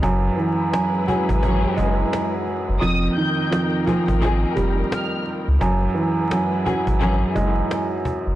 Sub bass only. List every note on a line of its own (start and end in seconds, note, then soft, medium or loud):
0.03 0.30 F#1 loud
1.29 1.66 G#1 medium
1.78 2.04 F#1 medium
2.69 2.79 F#1 loud
2.82 3.09 F1 loud
4.08 4.45 G#1 loud
4.57 4.83 F1 loud
5.48 5.58 C#2 medium
5.61 5.88 F#1 loud
6.87 7.24 G#1 medium
7.36 7.62 F#1 medium
8.27 8.35 F#1 medium